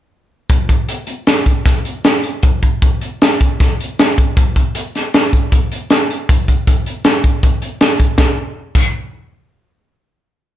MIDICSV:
0, 0, Header, 1, 2, 480
1, 0, Start_track
1, 0, Tempo, 386100
1, 617, Time_signature, 5, 2, 24, 8
1, 7817, Tempo, 378310
1, 13249, End_track
2, 0, Start_track
2, 0, Title_t, "Drums"
2, 617, Note_on_c, 9, 36, 105
2, 617, Note_on_c, 9, 42, 81
2, 741, Note_off_c, 9, 42, 0
2, 742, Note_off_c, 9, 36, 0
2, 859, Note_on_c, 9, 36, 74
2, 861, Note_on_c, 9, 42, 58
2, 984, Note_off_c, 9, 36, 0
2, 985, Note_off_c, 9, 42, 0
2, 1102, Note_on_c, 9, 42, 73
2, 1226, Note_off_c, 9, 42, 0
2, 1328, Note_on_c, 9, 42, 53
2, 1452, Note_off_c, 9, 42, 0
2, 1578, Note_on_c, 9, 42, 88
2, 1582, Note_on_c, 9, 38, 104
2, 1703, Note_off_c, 9, 42, 0
2, 1707, Note_off_c, 9, 38, 0
2, 1818, Note_on_c, 9, 36, 70
2, 1819, Note_on_c, 9, 42, 56
2, 1942, Note_off_c, 9, 36, 0
2, 1943, Note_off_c, 9, 42, 0
2, 2058, Note_on_c, 9, 36, 98
2, 2062, Note_on_c, 9, 42, 75
2, 2066, Note_on_c, 9, 38, 31
2, 2183, Note_off_c, 9, 36, 0
2, 2187, Note_off_c, 9, 42, 0
2, 2191, Note_off_c, 9, 38, 0
2, 2301, Note_on_c, 9, 42, 57
2, 2426, Note_off_c, 9, 42, 0
2, 2541, Note_on_c, 9, 42, 71
2, 2545, Note_on_c, 9, 38, 99
2, 2666, Note_off_c, 9, 42, 0
2, 2669, Note_off_c, 9, 38, 0
2, 2779, Note_on_c, 9, 42, 59
2, 2903, Note_off_c, 9, 42, 0
2, 3017, Note_on_c, 9, 42, 77
2, 3024, Note_on_c, 9, 36, 104
2, 3142, Note_off_c, 9, 42, 0
2, 3148, Note_off_c, 9, 36, 0
2, 3263, Note_on_c, 9, 42, 56
2, 3266, Note_on_c, 9, 36, 68
2, 3388, Note_off_c, 9, 42, 0
2, 3390, Note_off_c, 9, 36, 0
2, 3508, Note_on_c, 9, 36, 90
2, 3512, Note_on_c, 9, 42, 66
2, 3632, Note_off_c, 9, 36, 0
2, 3636, Note_off_c, 9, 42, 0
2, 3747, Note_on_c, 9, 42, 50
2, 3872, Note_off_c, 9, 42, 0
2, 3999, Note_on_c, 9, 42, 75
2, 4002, Note_on_c, 9, 38, 108
2, 4123, Note_off_c, 9, 42, 0
2, 4127, Note_off_c, 9, 38, 0
2, 4236, Note_on_c, 9, 36, 70
2, 4245, Note_on_c, 9, 42, 52
2, 4360, Note_off_c, 9, 36, 0
2, 4369, Note_off_c, 9, 42, 0
2, 4478, Note_on_c, 9, 36, 99
2, 4486, Note_on_c, 9, 42, 75
2, 4489, Note_on_c, 9, 38, 33
2, 4603, Note_off_c, 9, 36, 0
2, 4610, Note_off_c, 9, 42, 0
2, 4614, Note_off_c, 9, 38, 0
2, 4730, Note_on_c, 9, 42, 57
2, 4854, Note_off_c, 9, 42, 0
2, 4963, Note_on_c, 9, 42, 75
2, 4966, Note_on_c, 9, 38, 100
2, 5087, Note_off_c, 9, 42, 0
2, 5091, Note_off_c, 9, 38, 0
2, 5196, Note_on_c, 9, 36, 71
2, 5203, Note_on_c, 9, 42, 58
2, 5320, Note_off_c, 9, 36, 0
2, 5328, Note_off_c, 9, 42, 0
2, 5431, Note_on_c, 9, 36, 102
2, 5431, Note_on_c, 9, 42, 80
2, 5555, Note_off_c, 9, 42, 0
2, 5556, Note_off_c, 9, 36, 0
2, 5670, Note_on_c, 9, 36, 70
2, 5673, Note_on_c, 9, 42, 61
2, 5794, Note_off_c, 9, 36, 0
2, 5797, Note_off_c, 9, 42, 0
2, 5904, Note_on_c, 9, 42, 77
2, 6029, Note_off_c, 9, 42, 0
2, 6157, Note_on_c, 9, 42, 53
2, 6161, Note_on_c, 9, 38, 27
2, 6281, Note_off_c, 9, 42, 0
2, 6285, Note_off_c, 9, 38, 0
2, 6391, Note_on_c, 9, 42, 88
2, 6395, Note_on_c, 9, 38, 108
2, 6516, Note_off_c, 9, 42, 0
2, 6519, Note_off_c, 9, 38, 0
2, 6625, Note_on_c, 9, 36, 68
2, 6626, Note_on_c, 9, 42, 56
2, 6750, Note_off_c, 9, 36, 0
2, 6751, Note_off_c, 9, 42, 0
2, 6862, Note_on_c, 9, 42, 74
2, 6865, Note_on_c, 9, 36, 89
2, 6987, Note_off_c, 9, 42, 0
2, 6989, Note_off_c, 9, 36, 0
2, 7107, Note_on_c, 9, 42, 57
2, 7231, Note_off_c, 9, 42, 0
2, 7338, Note_on_c, 9, 42, 73
2, 7341, Note_on_c, 9, 38, 89
2, 7462, Note_off_c, 9, 42, 0
2, 7466, Note_off_c, 9, 38, 0
2, 7589, Note_on_c, 9, 42, 58
2, 7713, Note_off_c, 9, 42, 0
2, 7822, Note_on_c, 9, 36, 105
2, 7832, Note_on_c, 9, 42, 78
2, 7949, Note_off_c, 9, 36, 0
2, 7959, Note_off_c, 9, 42, 0
2, 8064, Note_on_c, 9, 36, 68
2, 8064, Note_on_c, 9, 42, 57
2, 8191, Note_off_c, 9, 36, 0
2, 8191, Note_off_c, 9, 42, 0
2, 8307, Note_on_c, 9, 36, 89
2, 8310, Note_on_c, 9, 42, 71
2, 8434, Note_off_c, 9, 36, 0
2, 8437, Note_off_c, 9, 42, 0
2, 8548, Note_on_c, 9, 42, 51
2, 8675, Note_off_c, 9, 42, 0
2, 8778, Note_on_c, 9, 42, 76
2, 8782, Note_on_c, 9, 38, 109
2, 8905, Note_off_c, 9, 42, 0
2, 8909, Note_off_c, 9, 38, 0
2, 9026, Note_on_c, 9, 36, 74
2, 9026, Note_on_c, 9, 42, 55
2, 9152, Note_off_c, 9, 42, 0
2, 9153, Note_off_c, 9, 36, 0
2, 9269, Note_on_c, 9, 36, 91
2, 9271, Note_on_c, 9, 42, 69
2, 9396, Note_off_c, 9, 36, 0
2, 9398, Note_off_c, 9, 42, 0
2, 9506, Note_on_c, 9, 42, 59
2, 9633, Note_off_c, 9, 42, 0
2, 9745, Note_on_c, 9, 42, 72
2, 9749, Note_on_c, 9, 38, 93
2, 9872, Note_off_c, 9, 42, 0
2, 9876, Note_off_c, 9, 38, 0
2, 9986, Note_on_c, 9, 36, 72
2, 9991, Note_on_c, 9, 42, 63
2, 10113, Note_off_c, 9, 36, 0
2, 10118, Note_off_c, 9, 42, 0
2, 10216, Note_on_c, 9, 38, 80
2, 10222, Note_on_c, 9, 36, 101
2, 10343, Note_off_c, 9, 38, 0
2, 10348, Note_off_c, 9, 36, 0
2, 10941, Note_on_c, 9, 49, 74
2, 10942, Note_on_c, 9, 36, 92
2, 11068, Note_off_c, 9, 36, 0
2, 11068, Note_off_c, 9, 49, 0
2, 13249, End_track
0, 0, End_of_file